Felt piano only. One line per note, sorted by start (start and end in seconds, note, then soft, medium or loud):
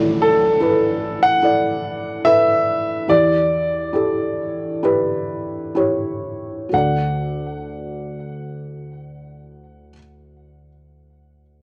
0.00 3.05 A1 medium
0.00 3.06 A2 medium
0.00 0.57 E4 medium
0.00 0.57 A4 medium
0.00 0.58 D5 medium
0.60 1.38 E4 medium
0.60 1.39 A4 medium
0.60 1.39 B4 medium
1.43 2.21 E4 medium
1.43 2.21 A4 medium
1.43 2.22 D5 medium
2.25 3.05 E4 medium
2.25 3.05 A4 soft
2.25 3.06 B4 medium
3.08 6.69 E2 soft
3.08 6.69 E3 soft
3.08 3.90 E4 medium
3.08 3.91 G4 soft
3.08 3.91 D5 medium
3.93 4.78 E4 medium
3.93 4.79 G4 medium
3.93 4.80 A4 medium
4.83 5.71 E4 medium
4.83 5.72 G4 medium
4.83 5.72 B4 medium
5.75 6.67 E4 medium
5.75 6.68 G4 medium
5.75 6.68 C#5 medium
6.69 9.93 D2 soft
6.69 9.89 F#4 soft
6.69 9.93 A4 soft
6.77 9.97 D5 medium